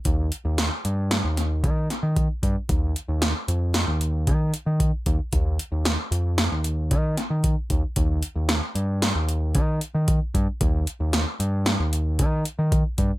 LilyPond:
<<
  \new Staff \with { instrumentName = "Picked electric bass" } { \clef bass \time 5/4 \key ees \major \tempo 4 = 114 ees,8 r16 ees,8 r16 g,8. ees,8. ees8 r16 ees8 r16 g,16 r16 | ees,8 r16 ees,8 r16 f,8. ees,8. ees8 r16 ees8 r16 ees,16 r16 | ees,8 r16 ees,8 r16 f,8. ees,8. ees8 r16 ees8 r16 ees,16 r16 | ees,8 r16 ees,8 r16 g,8. ees,8. ees8 r16 ees8 r16 g,16 r16 |
ees,8 r16 ees,8 r16 g,8. ees,8. ees8 r16 ees8 r16 g,16 r16 | }
  \new DrumStaff \with { instrumentName = "Drums" } \drummode { \time 5/4 <hh bd>8 hh8 <hh sn>8 hh8 <hh sn>8 <hh sn>8 <hh bd>8 <hh sn>8 <hh bd>8 <hh bd>8 | <hh bd>8 hh8 <hh sn>8 hh8 <hh sn>8 hh8 <hh bd>8 hh8 <hh bd>8 <hh bd>8 | <hh bd>8 hh8 <hh sn>8 hh8 <hh sn>8 hh8 <hh bd>8 <hh sn>8 <hh bd>8 <hh bd>8 | <hh bd>8 hh8 <hh sn>8 hh8 <hh sn>8 hh8 <hh bd>8 hh8 <hh bd>8 <hh bd>8 |
<hh bd>8 hh8 <hh sn>8 hh8 <hh sn>8 hh8 <hh bd>8 hh8 <hh bd>8 <hh bd>8 | }
>>